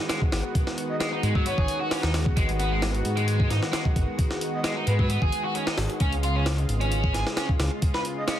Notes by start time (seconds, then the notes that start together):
Already playing: D#3 G#3 B3 F#4
0.09 G#3, snare, closed hi-hat
0.22 kick
0.32 G#1, snare, open hi-hat
0.55 kick, closed hi-hat
0.67 snare
0.78 closed hi-hat
0.89 D#5
1.00 G#3 D#5, snare, closed hi-hat
1.12 D#4
1.23 G#2 G#3, closed hi-hat
1.35 F#3, kick
1.46 B3 C#5, closed hi-hat
1.58 G#1 G#4, kick
1.68 closed hi-hat
1.81 F#4
1.91 C#4, snare, open hi-hat
2.03 D#2 D#4, snare
2.14 snare, open hi-hat
2.26 kick
2.37 G#1 G#3, kick, closed hi-hat
2.49 closed hi-hat
2.60 B3, closed hi-hat
2.72 G#3
2.82 snare, open hi-hat
2.95 closed hi-hat
3.05 G#2, closed hi-hat
3.17 G#3, closed hi-hat
3.28 closed hi-hat
3.40 kick
3.50 G#2 D#4, snare, closed hi-hat
3.63 snare
3.73 G#3, snare, closed hi-hat
3.85 kick
3.96 G#1, kick, closed hi-hat
4.19 kick, closed hi-hat
4.31 snare
4.41 closed hi-hat
4.54 D#5
4.64 G#3 D#5, snare, closed hi-hat
4.76 D#4
4.87 G#2 G#3 B4, closed hi-hat
4.99 F#3 B4, kick
5.09 B3, closed hi-hat
5.22 G#1 G#4, kick
5.32 closed hi-hat
5.44 F#4
5.55 C#4, closed hi-hat
5.67 D#4, snare
5.78 G#1, snare, open hi-hat
5.90 closed hi-hat
6.00 C#2 C#3 C#4 F4, kick, closed hi-hat
6.13 closed hi-hat
6.23 F4, closed hi-hat
6.35 C#4
6.46 snare, open hi-hat
6.58 closed hi-hat
6.69 G#1, closed hi-hat
6.81 C#4, closed hi-hat
6.92 closed hi-hat
7.04 kick
7.14 G#1 G#4, snare, closed hi-hat
7.27 snare
7.37 C#4, snare, closed hi-hat
7.49 kick
7.60 C#2, snare, open hi-hat
7.82 kick, closed hi-hat
7.94 B4, snare
8.05 closed hi-hat
8.17 D#5
8.28 C#4 D#5, snare, closed hi-hat